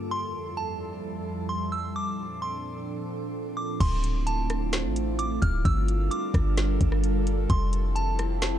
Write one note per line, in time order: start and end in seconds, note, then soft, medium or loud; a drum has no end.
0.00 3.77 A4 medium
0.11 1.94 F2 medium
0.11 1.94 F3 medium
0.11 1.94 G3 medium
0.11 1.94 E4 medium
0.11 0.55 C6 loud
0.57 1.46 A5 medium
1.49 1.71 C6 medium
1.72 1.94 E6 medium
1.96 3.79 A#2 medium
1.96 3.79 F3 medium
1.96 3.79 C4 medium
1.96 3.79 D4 medium
1.96 2.39 D6 loud
2.42 3.53 C6 medium
3.57 3.79 D6 medium
3.80 4.86 D1 loud
3.80 5.63 D3 medium
3.80 5.63 A3 medium
3.80 5.63 C4 medium
3.80 5.63 E4 medium
3.80 7.46 F4 medium
3.80 4.24 C6 loud
3.80 kick loud
3.80 closed hi-hat medium
3.80 crash loud
4.04 closed hi-hat medium
4.27 5.15 A5 medium
4.27 closed hi-hat medium
4.50 cross-stick loud
4.50 closed hi-hat medium
4.73 snare loud
4.73 closed hi-hat medium
4.84 5.39 A1 loud
4.96 closed hi-hat medium
5.19 5.41 D6 medium
5.19 closed hi-hat medium
5.42 5.64 D1 loud
5.42 5.64 F6 medium
5.42 kick medium
5.42 closed hi-hat medium
5.65 6.09 G1 loud
5.65 7.48 G3 medium
5.65 7.48 D4 medium
5.65 8.59 A4 medium
5.65 7.48 A#4 medium
5.65 6.08 E6 loud
5.65 kick loud
5.65 closed hi-hat medium
5.88 closed hi-hat medium
6.11 6.99 D6 medium
6.11 closed hi-hat medium
6.34 6.79 G1 loud
6.34 kick medium
6.34 cross-stick loud
6.34 closed hi-hat medium
6.57 snare loud
6.57 closed hi-hat medium
6.81 7.47 G1 loud
6.81 kick medium
6.81 closed hi-hat medium
6.92 cross-stick loud
7.04 closed hi-hat medium
7.27 closed hi-hat medium
7.50 8.59 F1 loud
7.50 8.59 F3 medium
7.50 8.59 C4 medium
7.50 8.59 E4 medium
7.50 8.59 G4 medium
7.50 7.93 C6 loud
7.50 kick loud
7.50 closed hi-hat medium
7.73 closed hi-hat medium
7.96 8.59 A5 medium
7.96 closed hi-hat medium
8.19 cross-stick loud
8.19 closed hi-hat medium
8.42 snare loud
8.42 closed hi-hat medium